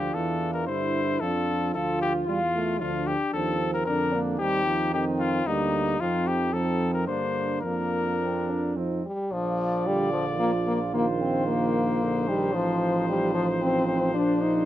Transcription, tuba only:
0.00 0.13 D2 soft
0.14 0.69 E2 medium
0.68 1.21 G2 medium
1.21 1.74 F2 medium
1.75 2.29 D2 medium
2.27 2.81 E2 medium
2.81 3.15 D2 medium
3.34 3.83 D#2 medium
3.86 4.40 F2 medium
4.39 4.94 D#2 medium
4.92 5.45 F2 medium
5.45 5.98 D2 medium
6.00 7.09 F2 medium
7.07 7.63 G2 medium
7.63 9.01 F2 soft
9.32 12.56 A#1 medium
12.55 14.17 A1 medium
14.15 14.65 A#1 medium

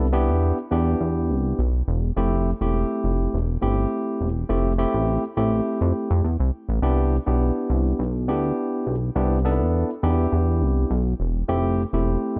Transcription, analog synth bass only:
0.00 0.30 C2 loud
0.29 0.52 E2 loud
0.71 0.95 E2 medium
1.01 1.31 E2 medium
1.30 1.54 C2 loud
1.59 1.82 B1 medium
1.88 2.12 E1 loud
2.17 2.53 F1 loud
2.61 2.85 E1 medium
3.04 3.28 F1 medium
3.34 3.57 E1 medium
3.63 3.86 G1 loud
4.21 4.45 E1 medium
4.50 4.86 F1 loud
4.94 5.18 A1 medium
5.37 5.61 A1 medium
5.81 5.93 F2 loud
6.11 6.22 F2 medium
6.24 6.37 E2 medium
6.40 6.51 C2 medium
6.69 6.80 A1 medium
6.82 7.19 C2 medium
7.27 7.51 B1 medium
7.70 7.94 C2 medium
7.99 8.30 B1 medium
8.28 8.52 D2 loud
8.87 9.10 B1 medium
9.16 9.62 C2 loud
9.60 9.84 E2 medium
10.03 10.27 E2 medium
10.32 10.63 E2 medium
10.61 10.85 C2 loud
10.91 11.14 B1 medium
11.20 11.44 E1 medium
11.49 11.85 F1 loud
11.93 12.17 E1 medium
12.36 12.40 G1 medium

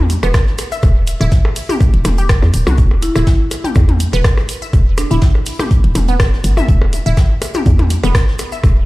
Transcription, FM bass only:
0.00 0.17 E2 loud
0.23 0.31 E1 medium
0.83 1.15 E1 loud
1.21 1.29 D1 loud
1.94 2.02 E1 medium
2.05 2.42 E1 medium
2.42 2.51 E2 loud
2.54 2.63 D1 medium
2.67 2.75 B1 loud
2.78 3.10 E1 loud
3.16 3.24 D1 loud
3.76 4.07 E2 loud
4.13 4.21 E1 medium
4.73 5.05 E1 loud
5.11 5.19 D1 loud
5.84 5.92 E1 medium
5.95 6.39 E1 loud
6.44 6.62 G1 medium
6.68 7.00 E1 loud
7.06 7.14 D1 loud
7.66 7.98 E2 loud
8.04 8.12 E1 medium
8.64 8.85 E1 loud

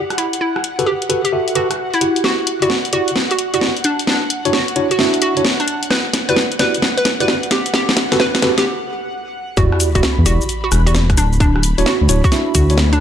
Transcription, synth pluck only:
0.18 0.36 E4 medium
0.41 0.59 E4 medium
0.86 1.09 G4 medium
1.25 1.47 G4 medium
1.56 1.78 F#4 medium
1.94 2.16 E4 medium
2.24 2.47 F#4 loud
2.62 2.85 F#4 medium
2.93 3.16 F#4 medium
3.31 3.44 F#4 medium
3.54 3.76 F#4 medium
3.85 4.02 D4 medium
4.08 4.25 D4 medium
4.53 4.76 F#4 medium
4.91 5.13 F#4 loud
5.22 5.44 F#4 medium
5.60 5.82 D4 medium
5.91 6.13 B4 loud
6.29 6.51 B4 medium
6.59 6.82 B4 loud
6.97 7.10 B4 medium
7.20 7.43 B4 medium
7.51 7.69 G4 medium
7.74 7.92 G4 medium
8.20 8.42 B4 loud
8.58 8.66 G4 medium
9.57 9.80 F#4 loud
9.95 10.17 F#4 loud
10.26 10.48 F#4 loud
10.64 10.76 F#4 medium
10.86 11.09 F#4 loud
11.18 11.35 D4 medium
11.40 11.58 D4 medium
11.86 12.09 F#4 medium
12.24 12.47 F#4 medium
12.55 12.77 F#4 medium
12.93 13.00 D4 medium

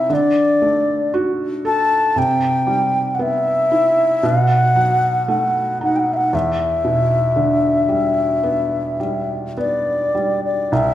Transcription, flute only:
0.00 0.15 E5 medium
0.14 1.16 D5 medium
1.67 2.20 A5 medium
2.18 3.16 G5 medium
3.15 3.24 F#5 soft
3.22 4.28 E5 medium
4.26 5.30 F#5 medium
5.30 5.79 F#5 medium
5.84 5.98 F#5 medium
5.96 6.15 F#5 medium
5.96 6.01 G5 soft
6.14 6.18 E5 soft
6.14 6.36 F#5 medium
6.35 9.37 E5 medium
9.59 10.40 D5 medium
10.45 10.75 D5 soft
10.74 10.94 E5 medium

